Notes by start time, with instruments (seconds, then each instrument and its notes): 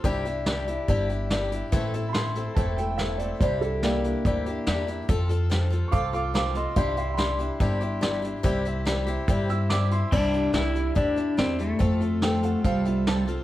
0.04 upright bass C2, steel-string acoustic guitar C3 G3 D4 E4 G4, kick, closed hi-hat
0.25 steel-string acoustic guitar D4 E4 G4, closed hi-hat
0.46 steel-string acoustic guitar G3 D4 E4 G4, snare, closed hi-hat
0.67 steel-string acoustic guitar D4 E4 G4, closed hi-hat
0.88 upright bass G1, steel-string acoustic guitar C3 G3 D4 E4 G4, kick, closed hi-hat
1.10 steel-string acoustic guitar D4 E4 G4, closed hi-hat
1.30 steel-string acoustic guitar G3 D4 E4 G4, snare, closed hi-hat
1.52 steel-string acoustic guitar D4 E4 G4, closed hi-hat
1.72 upright bass A1, steel-string acoustic guitar A2 E3 A3 C4 E4 A4, kick, closed hi-hat
1.94 steel-string acoustic guitar A3 C4 E4 A4, closed hi-hat
2.09 upright piano B5
2.13 steel-string acoustic guitar A3 C4 E4 A4, upright piano C6, snare, closed hi-hat
2.35 steel-string acoustic guitar A3 C4 E4 A4, closed hi-hat
2.55 upright bass E1, steel-string acoustic guitar A2 E3 A3 C4 E4 A4, upright piano A5, kick, closed hi-hat
2.77 steel-string acoustic guitar A3 C4 E4 A4, upright piano G5, closed hi-hat
2.98 steel-string acoustic guitar A3 C4 E4 A4, upright piano E5, snare, closed hi-hat
3.18 steel-string acoustic guitar A3 C4 E4 A4, upright piano D5, closed hi-hat
3.40 upright bass C2, steel-string acoustic guitar C3 G3 D4 E4 G4, upright piano C5, kick, closed hi-hat
3.61 steel-string acoustic guitar D4 E4 G4, upright piano A4, closed hi-hat
3.82 steel-string acoustic guitar G3 D4 E4 G4, upright piano A#3 G4, snare, closed hi-hat
4.04 steel-string acoustic guitar D4 E4 G4, closed hi-hat
4.25 upright bass D2, steel-string acoustic guitar C3 G3 D4 E4 G4, kick, closed hi-hat
4.46 steel-string acoustic guitar D4 E4 G4, closed hi-hat
4.67 upright bass E2, steel-string acoustic guitar G3 D4 E4 G4, snare, closed hi-hat
4.87 steel-string acoustic guitar D4 E4 G4, closed hi-hat
5.09 upright bass F2, steel-string acoustic guitar F3 C4 F4 A4, kick, closed hi-hat
5.29 steel-string acoustic guitar C4 F4 A4, closed hi-hat
5.50 steel-string acoustic guitar F3 C4 F4 A4, snare, closed hi-hat
5.70 steel-string acoustic guitar C4 F4 A4, closed hi-hat
5.88 upright piano F5 C#6
5.92 upright bass C2, steel-string acoustic guitar F3 C4 F4 A4, upright piano D6, kick, closed hi-hat
6.13 steel-string acoustic guitar C4 F4 A4, upright piano F5 D6, closed hi-hat
6.34 steel-string acoustic guitar F3 C4 F4 A4, upright piano F5 D6, snare, closed hi-hat
6.55 steel-string acoustic guitar C4 F4 A4, upright piano D#5 C6, closed hi-hat
6.76 upright bass C2, steel-string acoustic guitar C3 G3 D4 E4 G4, upright piano E5 C6, kick, closed hi-hat
6.97 steel-string acoustic guitar D4 E4 G4, upright piano E5 C6, closed hi-hat
7.14 steel-string acoustic guitar G3, upright piano B5 C6
7.18 steel-string acoustic guitar D4 E4 G4, snare, closed hi-hat
7.39 steel-string acoustic guitar D4 E4 G4, closed hi-hat
7.60 upright bass G1, steel-string acoustic guitar C3 G3 D4 E4 G4, kick, closed hi-hat
7.81 steel-string acoustic guitar D4 E4 G4, closed hi-hat
8.01 steel-string acoustic guitar G3 D4 E4 G4, snare, closed hi-hat
8.22 steel-string acoustic guitar D4 E4 G4, closed hi-hat
8.43 upright bass C2, steel-string acoustic guitar C3 G3 C4 E4 G4, kick, closed hi-hat
8.65 steel-string acoustic guitar C4 E4 G4, closed hi-hat
8.85 steel-string acoustic guitar G3 C4 E4 G4, snare, closed hi-hat
9.07 steel-string acoustic guitar C4 E4 G4, closed hi-hat
9.28 upright bass G2, steel-string acoustic guitar C3 G3 C4 E4 G4, kick, closed hi-hat
9.49 steel-string acoustic guitar C4 E4 G4, upright piano E6, closed hi-hat
9.70 steel-string acoustic guitar G3 C4 E4 G4, upright piano D6, snare, closed hi-hat
9.91 steel-string acoustic guitar C4 E4 G4, upright piano C6, closed hi-hat
10.12 upright bass C2, steel-string acoustic guitar C3 G3 D4 E4 G4, kick, crash
10.33 steel-string acoustic guitar D4 E4 G4, closed hi-hat
10.53 upright bass C2, steel-string acoustic guitar G3 D4 E4 G4, snare, closed hi-hat
10.75 steel-string acoustic guitar D4 E4 G4, closed hi-hat
10.95 upright bass D2, steel-string acoustic guitar C3 G3 D4 E4 G4, kick, closed hi-hat
11.16 steel-string acoustic guitar D4 E4 G4, closed hi-hat
11.37 upright bass E2, steel-string acoustic guitar G3 D4 E4 G4, pedal steel guitar C4, snare, closed hi-hat
11.59 pedal steel guitar A3, steel-string acoustic guitar D4 E4 G4, closed hi-hat
11.79 upright bass F2, steel-string acoustic guitar F3 C4 F4 A4, kick, closed hi-hat
12.01 steel-string acoustic guitar C4 F4 A4, closed hi-hat
12.22 steel-string acoustic guitar F3 C4 F4 A4, upright piano G5, snare, closed hi-hat
12.43 steel-string acoustic guitar C4 F4 A4, upright piano F#5, closed hi-hat
12.64 upright bass C2, steel-string acoustic guitar F3 C4 F4 A4, upright piano F5, kick, closed hi-hat
12.69 pedal steel guitar G3
12.85 steel-string acoustic guitar C4 F4 A4, upright piano E5, closed hi-hat
13.07 steel-string acoustic guitar F3 C4 F4 A4, upright piano A5, snare, closed hi-hat
13.27 steel-string acoustic guitar C4 F4 A4, closed hi-hat